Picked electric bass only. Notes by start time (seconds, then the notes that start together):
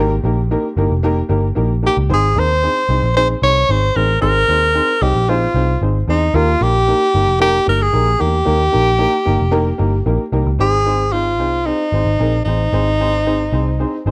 Already playing: G#1
0.24 A#1
0.77 G1
0.90 F1
1.30 G1
1.57 A#1
1.97 C#2
2.10 G#1
2.35 D#2
2.89 C2
3.03 A#1
3.42 C2
3.69 G#1
3.96 A1
4.22 G#1
4.48 D#2
5.02 C2
5.15 A#1
5.54 C2
5.81 G#1
6.08 E2
6.34 D#2
6.61 A#1
7.15 G1
7.28 F1
7.68 G1
7.94 A#1
8.21 E2
8.47 D#2
8.75 A#1
9.27 G1
9.40 F1
9.80 G1
10.06 A#1
10.32 C2
10.46 C#2
10.59 G#1
11.40 C2
11.92 G#1
12.05 G#1
12.20 A#1
12.46 A1
12.72 G#1
13.52 C2
14.06 G#1